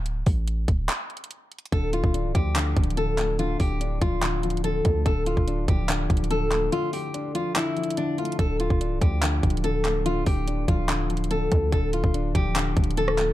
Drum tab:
HH |x-----o-----x-----x-----x-----x-x-x-x-----x-x-x-|x-----x-----x-----x-----x-----x-x-x-x-----x-----|x-----o-----x-----x-----x-----x-x-x-x-----x-----|x-----x-----x-----x-----x-----x-x-x-x-----x-----|
CP |------------------------x-----------------------|------------------------x-----------------x-----|------------------------x-----------------------|------------------------x-----------------x-----|
SD |------------------------------------------------|------------------------------------------------|------------------------------------------------|------------------------------------------------|
BD |------o-----------o-----------------------------|o--------o--------o-----------o-----------------|------o-----------o-----------------------o-----|o--------o--------o-----------o-----------------|

HH |x-----o-----x-----x-----x-----x-x-x-x-----x-x-x-|x-----x-----x-----x-----x-----x-x-x-x-----x-----|x-----o-----x-----x-----x-----x-x-x-x-----x-----|x-----x-----x-----x-----x-----x-x-x-x-----x-----|
CP |------------------------x-----------------------|------------------------x-----------------x-----|------------------------x-----------------------|------------------------x-----------------x-----|
SD |------------------------------------------------|------------------------------------------------|------------------------------------------------|---------------------------------------r--------|
BD |------------------------------------------------|o--------o--------o-----------o-----------------|------o-----------o-----------------------o-----|o--------o--------o-----------o-----------------|